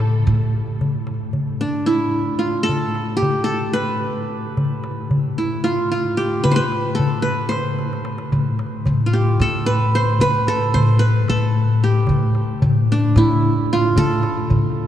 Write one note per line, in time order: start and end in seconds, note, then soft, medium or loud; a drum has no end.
0.00 0.23 A2 medium
0.00 0.80 A2 medium
0.00 0.24 A4 medium
0.00 0.27 A4 medium
0.00 darbuka tek medium
0.27 0.52 A2 medium
0.27 darbuka ka soft
0.67 darbuka ka soft
0.80 4.58 A2 medium
0.80 darbuka dum medium
1.07 darbuka tek medium
1.33 darbuka dum medium
1.61 3.10 D4 medium
1.61 darbuka ka soft
1.86 2.45 E4 medium
1.86 darbuka tek medium
2.15 darbuka ka soft
2.39 3.74 F4 medium
2.55 darbuka ka soft
2.63 3.44 A4 medium
2.69 darbuka dum medium
2.95 darbuka tek medium
3.17 4.42 G4 medium
3.22 darbuka dum medium
3.44 4.61 A4 medium
3.49 darbuka ka soft
3.73 4.83 B4 medium
3.73 darbuka tek medium
4.02 darbuka ka soft
4.44 darbuka ka soft
4.57 8.31 A2 medium
4.57 darbuka dum medium
4.84 darbuka tek medium
5.11 darbuka dum medium
5.38 5.70 E4 medium
5.38 darbuka ka soft
5.64 5.91 F4 medium
5.64 darbuka tek medium
5.91 7.26 F4 medium
5.91 darbuka ka soft
6.17 7.43 G4 medium
6.32 darbuka ka soft
6.44 6.56 B4 medium
6.44 darbuka dum medium
6.51 6.62 C5 medium
6.56 7.22 B4 medium
6.72 darbuka tek medium
6.95 8.12 A4 medium
6.99 darbuka dum medium
7.13 darbuka ka soft
7.22 7.55 B4 medium
7.22 darbuka ka soft
7.49 8.55 C5 medium
7.49 darbuka tek medium
7.79 darbuka tek soft
7.93 darbuka ka medium
8.05 darbuka tek medium
8.18 darbuka ka medium
8.32 12.09 A2 medium
8.32 8.57 A2 medium
8.32 darbuka dum medium
8.59 darbuka tek medium
8.86 9.36 A2 medium
8.86 darbuka dum medium
9.06 10.41 F4 medium
9.13 10.39 G4 medium
9.13 darbuka ka soft
9.40 10.16 A2 medium
9.40 10.48 A4 medium
9.40 darbuka tek medium
9.66 10.01 B4 medium
9.66 darbuka ka soft
9.95 10.27 C5 medium
10.06 darbuka ka soft
10.19 10.45 A2 medium
10.19 10.80 B4 loud
10.19 darbuka dum medium
10.47 11.29 A4 medium
10.47 darbuka tek medium
10.74 11.24 A2 medium
10.74 11.05 C5 medium
10.74 darbuka dum medium
10.99 12.08 B4 medium
10.99 darbuka ka soft
11.28 12.05 A2 medium
11.28 12.47 A4 medium
11.28 darbuka tek medium
11.56 darbuka ka soft
11.84 13.09 G4 medium
11.95 darbuka ka soft
12.07 12.33 A2 medium
12.07 14.87 A2 medium
12.07 darbuka dum medium
12.35 darbuka tek soft
12.62 13.11 A2 medium
12.62 darbuka dum medium
12.90 14.41 D4 medium
12.90 darbuka ka soft
13.16 13.92 A2 medium
13.16 13.79 E4 medium
13.16 darbuka tek medium
13.43 darbuka ka soft
13.73 14.87 F4 medium
13.84 darbuka ka soft
13.96 14.21 A2 medium
13.96 14.87 A4 loud
13.96 darbuka dum medium
14.23 darbuka tek medium
14.50 14.87 A2 medium
14.50 darbuka dum medium
14.63 darbuka ka soft
14.77 darbuka ka soft